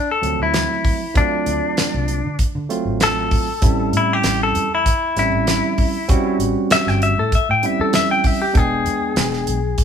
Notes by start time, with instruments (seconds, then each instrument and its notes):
0.11 clean electric guitar A4
0.22 fingered electric bass D2, tine electric piano F3 F#3 A3 C4, closed hi-hat
0.40 fingered electric bass D2, clean electric guitar E4
0.54 snare, closed hi-hat
0.84 kick, open hi-hat
1.14 tine electric piano F#3 A3 C4 F4, clean electric guitar D4, kick, closed hi-hat
1.46 fingered electric bass D2, closed hi-hat
1.77 muted fingered electric bass stroke, snare, closed hi-hat
1.94 fingered electric bass C2
2.08 closed hi-hat
2.25 fingered electric bass D3
2.39 kick, closed hi-hat
2.55 fingered electric bass D3
2.69 tine electric piano F#3 A3 C4 F4, closed hi-hat
2.85 fingered electric bass A1
3.00 clean electric guitar A4, snare, closed hi-hat
3.31 kick, open hi-hat
3.61 fingered electric bass A1, tine electric piano G3 C4 C#4 E4, kick, closed hi-hat
3.93 fingered electric bass A2, closed hi-hat
3.97 clean electric guitar E4
4.13 clean electric guitar G4
4.23 fingered electric bass A1, snare, closed hi-hat
4.43 clean electric guitar A4
4.55 fingered electric bass E2, closed hi-hat
4.75 clean electric guitar E4
4.86 kick, closed hi-hat
5.17 fingered electric bass A1, tine electric piano G3 C4 C#4 E4, clean electric guitar E4, snare, closed hi-hat
5.33 fingered electric bass A1
5.47 snare, closed hi-hat
5.78 kick, open hi-hat
6.08 tine electric piano G3 C4 C#4 F#4, kick, closed hi-hat
6.39 fingered electric bass A1, closed hi-hat
6.70 clean electric guitar E5, muted fingered electric bass stroke, snare, closed hi-hat
6.87 fingered electric bass G1, clean electric guitar G5, snare
7.02 clean electric guitar E5, closed hi-hat
7.18 fingered electric bass A2, clean electric guitar A4
7.32 clean electric guitar E5, kick, closed hi-hat
7.49 fingered electric bass A2, clean electric guitar G5
7.63 tine electric piano G3 C4 C#4 E4, clean electric guitar E5, closed hi-hat
7.79 fingered electric bass E2, clean electric guitar A4
7.93 clean electric guitar E5, snare, closed hi-hat
8.11 clean electric guitar G5
8.24 clean electric guitar E5, kick, open hi-hat
8.42 clean electric guitar G4
8.53 fingered electric bass E1, tine electric piano G#3 B3 D4 G5, kick, closed hi-hat
8.57 clean electric guitar G#4
8.86 fingered electric bass E2, closed hi-hat
9.16 fingered electric bass E1, snare, closed hi-hat
9.33 snare
9.47 fingered electric bass B1, closed hi-hat
9.78 kick, closed hi-hat